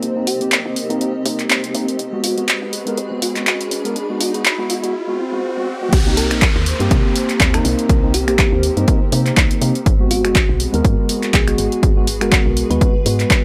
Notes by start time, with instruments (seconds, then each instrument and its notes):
Already playing: tine electric piano A#3 C4 D#4, analog synth pad A#3 D#4, ambient pad C4 G4 C5 D#5, riser
0.02 fm bass C2, analog synth pad A#4, closed hi-hat
0.16 tine electric piano A#3 C4 D#4
0.27 synth pluck G4, open hi-hat
0.40 fm bass A#1, tine electric piano A#3 C4 G4, closed hi-hat
0.52 clap, closed hi-hat
0.65 fm bass D#2
0.76 open hi-hat
0.90 fm bass G2, tine electric piano A#3 C4 D#4, closed hi-hat
1.00 tine electric piano A#3 C4 D#4, closed hi-hat
1.25 fm bass C3, tine electric piano A#3 C4 D#4, open hi-hat
1.39 clap, closed hi-hat
1.50 fm bass C2, clap, closed hi-hat
1.64 closed hi-hat
1.74 fm bass C3, tine electric piano A#3 C4 D#4, open hi-hat
1.88 closed hi-hat
1.99 fm bass G#1, analog synth pad G#3 F#4 B4, ambient pad G#4, closed hi-hat
2.12 tine electric piano G#3 B3 F#4
2.24 synth pluck F#4, open hi-hat
2.37 tine electric piano G#3 B3 F#4, closed hi-hat
2.48 clap, closed hi-hat
2.62 fm bass B1
2.73 open hi-hat
2.86 fm bass D#2, tine electric piano G#3 B3 A#4, closed hi-hat
2.94 fm bass G#2, ambient pad B5, closed hi-hat
3.11 tine electric piano G#3 B3 F#4
3.22 synth pluck F#4, open hi-hat
3.36 tine electric piano G#3 B3 F#4, clap, closed hi-hat
3.47 fm bass B1, clap, closed hi-hat
3.61 closed hi-hat
3.71 fm bass G#1, open hi-hat
3.84 tine electric piano G#3 B3 A#4, closed hi-hat
3.96 fm bass G#1, closed hi-hat
4.09 tine electric piano G#3 B3 F#4
4.21 synth pluck F#4, open hi-hat
4.34 tine electric piano G#3 B3 F#4, closed hi-hat
4.45 clap, closed hi-hat
4.58 fm bass B1, tine electric piano G#3 B3 F#4
4.70 synth pluck F#4, open hi-hat
4.83 fm bass D#2, tine electric piano G#3 B3 F#4, closed hi-hat
4.94 swell
5.07 tine electric piano G#3 B3 F#4
5.32 tine electric piano G#3 B3 F#4
5.57 tine electric piano G#3 B3 F#4
5.81 tine electric piano G#3 B3 F#4
5.92 fm bass C2, analog synth pad A#3 D#4 C5, ambient pad C4, kick, closed hi-hat, crash, downlifter
6.06 tine electric piano A#3 C4 D#4
6.17 synth pluck A#4, open hi-hat
6.29 fm bass A#1, tine electric piano A#3 C4 D#4, ambient pad C5, finger snap, closed hi-hat
6.42 ambient pad G4, kick, clap, closed hi-hat
6.56 fm bass D#2
6.66 open hi-hat
6.79 fm bass G2, tine electric piano A#3 C4 G4, closed hi-hat
6.91 fm bass C3, kick, closed hi-hat
7.16 open hi-hat
7.29 clap, closed hi-hat
7.40 fm bass D#2, kick, clap, closed hi-hat
7.54 tine electric piano A#3 C4 D#4, synth pluck A#4, finger snap, closed hi-hat
7.65 fm bass C2, open hi-hat
7.79 closed hi-hat
7.89 fm bass C2, analog synth pad A#4, kick, closed hi-hat
8.03 tine electric piano A#3 C4 D#4
8.14 synth pluck G4, open hi-hat
8.27 fm bass A#1, tine electric piano A#3 C4 G4, finger snap, closed hi-hat
8.39 kick, clap, closed hi-hat
8.52 fm bass D#2
8.63 open hi-hat
8.76 fm bass G2, tine electric piano A#3 C4 D#4, closed hi-hat
8.87 tine electric piano A#3 C4 D#4, kick, closed hi-hat
9.12 fm bass C3, tine electric piano A#3 C4 D#4, open hi-hat
9.26 clap, closed hi-hat
9.37 fm bass C2, kick, clap, closed hi-hat
9.51 closed hi-hat
9.61 fm bass C3, tine electric piano A#3 C4 D#4, open hi-hat
9.75 closed hi-hat
9.86 fm bass G#1, analog synth pad G#3 B3 F#4, ambient pad G#4, kick, closed hi-hat
9.99 tine electric piano G#3 B3 F#4
10.11 synth pluck F#4, open hi-hat
10.24 fm bass F#1, tine electric piano G#3 B3 F#4, finger snap, closed hi-hat
10.35 kick, clap, closed hi-hat
10.49 fm bass B1
10.60 open hi-hat
10.73 fm bass D#2, tine electric piano G#3 B3 A#4, closed hi-hat
10.85 fm bass G#2, kick, closed hi-hat
11.08 ambient pad B4, open hi-hat
11.23 clap, closed hi-hat
11.34 fm bass B1, synth pluck G#4, kick, clap, closed hi-hat
11.47 tine electric piano G#3 B3 F#4, finger snap, closed hi-hat
11.58 fm bass G#1, open hi-hat
11.72 closed hi-hat
11.83 fm bass G#1, kick, closed hi-hat
11.96 tine electric piano G#3 B3 F#4
12.07 open hi-hat
12.21 fm bass F#1, tine electric piano G#3 B3 A#4, synth pluck F#4, finger snap, closed hi-hat
12.32 synth pluck F#4, kick, clap, closed hi-hat
12.46 fm bass B1
12.57 open hi-hat
12.70 fm bass D#2, tine electric piano G#3 B3 F#4, synth pluck B4, closed hi-hat
12.81 tine electric piano G#3 B3 F#4, kick, closed hi-hat
13.05 fm bass G#2, tine electric piano G#3 B3 F#4, open hi-hat
13.20 clap, closed hi-hat
13.30 kick, clap, closed hi-hat